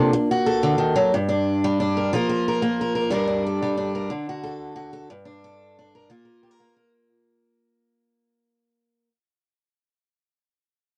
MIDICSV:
0, 0, Header, 1, 3, 480
1, 0, Start_track
1, 0, Key_signature, -2, "minor"
1, 0, Tempo, 331675
1, 1621, Time_signature, 12, 3, 24, 8
1, 15882, End_track
2, 0, Start_track
2, 0, Title_t, "Steel-string acoustic guitar"
2, 0, Program_c, 0, 25
2, 0, Note_on_c, 0, 48, 56
2, 0, Note_on_c, 0, 58, 63
2, 0, Note_on_c, 0, 62, 51
2, 0, Note_on_c, 0, 69, 54
2, 158, Note_off_c, 0, 69, 0
2, 181, Note_off_c, 0, 48, 0
2, 422, Note_off_c, 0, 62, 0
2, 448, Note_on_c, 0, 66, 53
2, 670, Note_on_c, 0, 69, 54
2, 911, Note_on_c, 0, 50, 62
2, 1123, Note_off_c, 0, 50, 0
2, 1128, Note_on_c, 0, 51, 54
2, 1374, Note_off_c, 0, 51, 0
2, 1385, Note_on_c, 0, 54, 60
2, 1596, Note_off_c, 0, 69, 0
2, 1605, Note_off_c, 0, 58, 0
2, 1605, Note_off_c, 0, 66, 0
2, 1623, Note_off_c, 0, 54, 0
2, 1648, Note_on_c, 0, 43, 68
2, 1861, Note_on_c, 0, 62, 52
2, 2376, Note_on_c, 0, 55, 61
2, 2581, Note_off_c, 0, 62, 0
2, 2604, Note_on_c, 0, 62, 55
2, 2848, Note_on_c, 0, 70, 50
2, 3045, Note_off_c, 0, 70, 0
2, 3049, Note_off_c, 0, 55, 0
2, 3072, Note_off_c, 0, 62, 0
2, 3074, Note_off_c, 0, 43, 0
2, 3080, Note_on_c, 0, 53, 63
2, 3095, Note_on_c, 0, 58, 52
2, 3107, Note_on_c, 0, 65, 54
2, 3118, Note_on_c, 0, 70, 56
2, 3301, Note_off_c, 0, 70, 0
2, 3318, Note_on_c, 0, 70, 62
2, 3549, Note_off_c, 0, 70, 0
2, 3590, Note_on_c, 0, 70, 55
2, 3777, Note_off_c, 0, 58, 0
2, 3795, Note_on_c, 0, 58, 63
2, 4045, Note_off_c, 0, 70, 0
2, 4068, Note_on_c, 0, 70, 55
2, 4255, Note_off_c, 0, 70, 0
2, 4273, Note_on_c, 0, 70, 58
2, 4477, Note_off_c, 0, 70, 0
2, 4491, Note_on_c, 0, 43, 70
2, 4494, Note_off_c, 0, 58, 0
2, 4495, Note_off_c, 0, 65, 0
2, 4499, Note_off_c, 0, 53, 0
2, 4504, Note_on_c, 0, 55, 61
2, 4522, Note_on_c, 0, 62, 64
2, 4535, Note_on_c, 0, 70, 57
2, 4721, Note_off_c, 0, 62, 0
2, 4739, Note_on_c, 0, 62, 52
2, 4995, Note_off_c, 0, 70, 0
2, 5014, Note_on_c, 0, 69, 52
2, 5222, Note_off_c, 0, 55, 0
2, 5245, Note_on_c, 0, 55, 55
2, 5444, Note_off_c, 0, 62, 0
2, 5461, Note_on_c, 0, 62, 54
2, 5709, Note_off_c, 0, 69, 0
2, 5715, Note_on_c, 0, 70, 50
2, 5918, Note_off_c, 0, 70, 0
2, 5924, Note_off_c, 0, 55, 0
2, 5932, Note_on_c, 0, 50, 62
2, 5935, Note_off_c, 0, 43, 0
2, 6180, Note_off_c, 0, 62, 0
2, 6207, Note_on_c, 0, 66, 52
2, 6417, Note_on_c, 0, 69, 52
2, 6866, Note_off_c, 0, 66, 0
2, 6883, Note_on_c, 0, 66, 48
2, 7115, Note_off_c, 0, 69, 0
2, 7132, Note_on_c, 0, 69, 55
2, 7342, Note_off_c, 0, 66, 0
2, 7347, Note_off_c, 0, 50, 0
2, 7347, Note_off_c, 0, 69, 0
2, 7380, Note_on_c, 0, 43, 65
2, 7601, Note_on_c, 0, 62, 49
2, 7873, Note_on_c, 0, 69, 51
2, 8330, Note_off_c, 0, 62, 0
2, 8374, Note_on_c, 0, 62, 54
2, 8586, Note_off_c, 0, 69, 0
2, 8609, Note_on_c, 0, 70, 47
2, 8805, Note_off_c, 0, 70, 0
2, 8819, Note_off_c, 0, 43, 0
2, 8834, Note_on_c, 0, 58, 49
2, 8836, Note_off_c, 0, 62, 0
2, 8842, Note_on_c, 0, 65, 51
2, 8845, Note_on_c, 0, 70, 43
2, 9028, Note_off_c, 0, 70, 0
2, 9045, Note_on_c, 0, 70, 54
2, 9292, Note_off_c, 0, 70, 0
2, 9305, Note_on_c, 0, 67, 50
2, 9418, Note_off_c, 0, 67, 0
2, 9418, Note_on_c, 0, 70, 44
2, 9536, Note_off_c, 0, 58, 0
2, 9553, Note_on_c, 0, 58, 53
2, 9773, Note_off_c, 0, 70, 0
2, 9790, Note_on_c, 0, 70, 48
2, 10024, Note_off_c, 0, 70, 0
2, 10242, Note_off_c, 0, 65, 0
2, 13145, Note_off_c, 0, 58, 0
2, 15882, End_track
3, 0, Start_track
3, 0, Title_t, "Muted steel-string acoustic guitar strokes"
3, 191, Note_on_c, 9, 29, 67
3, 335, Note_off_c, 9, 29, 0
3, 4511, Note_on_c, 9, 29, 59
3, 4656, Note_off_c, 9, 29, 0
3, 8822, Note_on_c, 9, 29, 58
3, 8966, Note_off_c, 9, 29, 0
3, 15882, End_track
0, 0, End_of_file